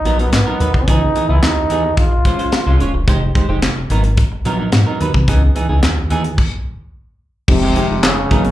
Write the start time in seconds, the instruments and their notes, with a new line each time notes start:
Already playing: trombone D#4
0.05 analog synth bass A#1, clean electric guitar F#3 B3 D#4 A#4, closed hi-hat
0.19 clean electric guitar F#3 B3 D#4 A#4, trombone B3, closed hi-hat
0.32 analog synth bass G#2, trombone B3, snare, clap, closed hi-hat
0.47 clean electric guitar F#3 B3 D#4 A#4
0.60 analog synth bass D#2, clean electric guitar F#3 B3 D#4 B4, closed hi-hat
0.74 analog synth bass C2, muted clean electric guitar stroke, kick
0.88 analog synth bass C#2, clean electric guitar E3 B3 D#4 G#4, trombone D#4, kick, closed hi-hat
1.15 clean electric guitar E3 B3 D#4 G#4, closed hi-hat
1.29 analog synth bass C#2, clean electric guitar E3 B3 D#4 G#4, trombone E4
1.43 analog synth bass D#2, trombone D#4, snare, clap, closed hi-hat
1.57 muted clean electric guitar stroke
1.70 analog synth bass D#2, clean electric guitar E3 B3 D#4 G#4, closed hi-hat
1.84 muted clean electric guitar stroke
1.97 analog synth bass A#1, trombone F4, muted clean electric guitar stroke, kick, closed hi-hat
2.12 muted clean electric guitar stroke
2.25 clean electric guitar G#3 C#4 F4 C5, kick, closed hi-hat
2.39 clean electric guitar G#3 C#4 F4 C5, closed hi-hat
2.52 muted clean electric guitar stroke, snare, clap, closed hi-hat
2.66 analog synth bass C2, clean electric guitar G#3 C#4 F4 C5
2.80 analog synth bass D#1, clean electric guitar G#3 C#4 F4 C#5, closed hi-hat
2.94 analog synth bass E1, muted clean electric guitar stroke
3.08 analog synth bass F1, clean electric guitar G#3 D#4 G4 C5, kick, closed hi-hat
3.35 clean electric guitar G#3 D#4 G4 C5, kick, closed hi-hat
3.49 analog synth bass F1, clean electric guitar G#3 D#4 G4 C5
3.62 analog synth bass F1, snare, clap, closed hi-hat
3.77 muted clean electric guitar stroke
3.90 analog synth bass G#1, clean electric guitar F#3 B3 D#4 A#4, closed hi-hat
4.04 muted clean electric guitar stroke, closed hi-hat
4.17 muted clean electric guitar stroke, kick, closed hi-hat
4.32 muted clean electric guitar stroke
4.45 analog synth bass A#1, clean electric guitar F#3 B3 D#4 A#4, closed hi-hat
4.59 clean electric guitar F#3 B3 D#4 A#4
4.72 analog synth bass G#2, snare, clap, closed hi-hat
4.87 clean electric guitar F#3 B3 D#4 A#4
5.00 analog synth bass D#2, clean electric guitar F#3 B3 D#4 B4, closed hi-hat
5.14 analog synth bass C2, muted clean electric guitar stroke, kick
5.28 analog synth bass C#2, clean electric guitar E3 B3 D#4 G#4, kick, closed hi-hat
5.55 clean electric guitar E3 B3 D#4 G#4, closed hi-hat
5.69 analog synth bass C#2, clean electric guitar E3 B3 D#4 G#4
5.83 analog synth bass D#2, snare, clap, closed hi-hat
5.97 muted clean electric guitar stroke
6.10 analog synth bass D#2, clean electric guitar E3 B3 D#4 G#4, closed hi-hat
6.24 muted clean electric guitar stroke, closed hi-hat
6.38 kick, crash
7.48 analog synth bass F1, trombone C3, tine electric piano F3 G#3 C4 D#4 G4, muted clean electric guitar stroke, kick, crash
7.62 clean electric guitar D#3 G#3 C4 G4
7.76 clean electric guitar D#3 G#3 C4 G4, closed hi-hat
7.90 analog synth bass F1, muted clean electric guitar stroke
8.03 analog synth bass F1, trombone C#3, snare, clap, closed hi-hat
8.17 muted clean electric guitar stroke
8.31 analog synth bass G#1, clean electric guitar F#3 B3 D#4 A#4, tine electric piano F#3 A#3 B3 D#4 G#4, kick, closed hi-hat
8.44 muted clean electric guitar stroke, closed hi-hat